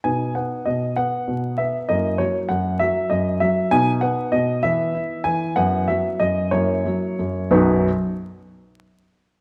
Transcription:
<<
  \new Staff \with { instrumentName = "Grand piano" } { \time 6/8 \key b \major \tempo 4. = 64 << { gis''8 fis''8 dis''8 fis''4 e''8 | dis''8 cis''8 fis''8 e''8 dis''8 e''8 | gis''8 fis''8 dis''8 e''4 gis''8 | fis''8 e''8 dis''8 cis''4. |
<b,, fis, fis b dis' fis' b'>8 r2 r8 | } \\ { <b dis'>2. | <ais e'>2. | <b dis'>4. <b e'>4. | <b e'>4. <ais e'>4. |
r2. | } >> }
  \new Staff \with { instrumentName = "Grand piano" } { \clef bass \time 6/8 \key b \major b,8 b8 b,8 b8 b,8 b8 | fis,8 fis8 fis,8 fis8 fis,8 fis8 | b,8 b8 b,8 e8 e'8 e8 | fis,8 fis8 fis,8 fis,8 fis8 fis,8 |
r2. | }
>>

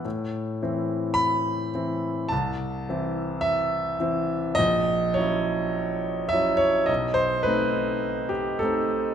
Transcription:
\new Staff \with { instrumentName = "Grand piano" } { \time 4/4 \key a \dorian \tempo 4 = 52 << { r4 b''4 a''4 e''4 | dis''8 cis''4 e''16 cis''16 dis''16 c''16 b'8. g'16 a'8 | } \\ { a,8 <e c' e'>4 <e c' e'>8 c,8 <e c' e'>4 <e c' e'>8 | ais,,8 <fis cis' e'>4 <fis cis' e'>8 b,,8 <a c' dis'>4 <a c' dis'>8 | } >> }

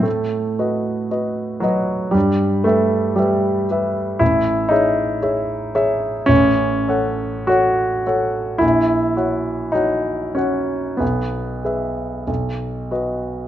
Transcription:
\new Staff \with { instrumentName = "Grand piano" } { \time 4/4 \key b \phrygian \tempo 4 = 55 << { a,8 <fis' b' dis''>8 <fis' b' dis''>8 <fis' b' dis''>8 g,8 <g' b' e''>8 <g' b' e''>8 <g' b' e''>8 | \key fis \dorian a,,8 <gis' cis'' e''>8 <gis' cis'' e''>8 <gis' cis'' e''>8 a,,8 <a' cis'' fis''>8 <a' cis'' fis''>8 <a' cis'' fis''>8 | ais,,8 <fis' cis'' fis''>8 <fis' cis'' fis''>8 <fis' cis'' fis''>8 b,,8 <gis' b' e''>8 b,,8 <fis' b' dis''>8 | } \\ { a4. fis8 g8 a8 g8 r8 | e'8 dis'4. cis'4 fis'4 | e'4 dis'8 cis'8 b4 r4 | } >> }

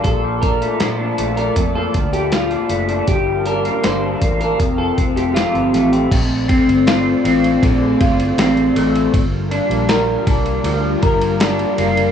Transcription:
<<
  \new Staff \with { instrumentName = "Clean electric guitar" } { \time 4/4 \key bes \major \tempo 4 = 79 a'8 bes'8 c''16 r8 bes'16 r16 a'16 r16 g'16 f'8. r16 | g'8 bes'8 c''16 r8 bes'16 r16 a'16 r16 g'16 f'8. r16 | r1 | r1 | }
  \new Staff \with { instrumentName = "String machine" } { \time 4/4 \key bes \major << { d''1 | f''1 | d''1 | bes'1 | } \\ { <bes, f' a''>1 | <g d' bes'>2 <f c' a'>2 | <a a' c''>1 | <g d' f'>1 | } >> }
  \new Staff \with { instrumentName = "Clean electric guitar" } { \time 4/4 \key bes \major bes,16 f16 d'16 a16 f16 d'16 a16 d'16 bes,16 f16 d'16 a16 f16 d'16 a16 d'16 | g,16 f16 d'16 bes16 d16 d'16 bes16 d'16 f,16 f16 c'16 a16 c16 c'16 a16 c'16 | r8 c'8 f'8 c'8 d8 f'8 c'8 a8 | r8 d'8 bes'8 d'8 f8 bes'8 d'8 bes8 | }
  \new Staff \with { instrumentName = "Fingered electric bass" } { \clef bass \time 4/4 \key bes \major bes,,4 bes,8 bes,,8 f,8 d,4 ges,,8 | g,,4 g,,8 a,,8 f,,8 f,,8. g,,16 a,,8 | bes,,8. g,,8. a,,8 bes,,8 g,,8 a,,8 a,,8 | g,,8. bes,,8. c,8 d,8 g,,4 ges,,8 | }
  \new DrumStaff \with { instrumentName = "Drums" } \drummode { \time 4/4 <hh bd>8 <hh bd>16 hh16 <hh sn>8 hh16 hh16 <hh bd>8 <hh bd>16 hh16 <hh sn>16 hh16 hh16 hh16 | <hh bd>8 hh16 hh16 <hh sn>8 <hh bd>16 hh16 <hh bd>8 <hh bd>16 hh16 <hh sn>16 hh16 <hh sn>16 hh16 | <cymc bd cymr>8 <bd cymr>16 cymr16 <cymr sn>8 cymr16 cymr16 <bd cymr>8 <bd cymr>16 cymr16 <cymr sn>16 cymr16 cymr16 cymr16 | <bd cymr>8 cymr16 cymr16 <cymr sn>8 <bd cymr>16 cymr16 cymr8 <bd cymr>16 cymr16 <cymr sn>16 cymr16 cymr16 cymr16 | }
>>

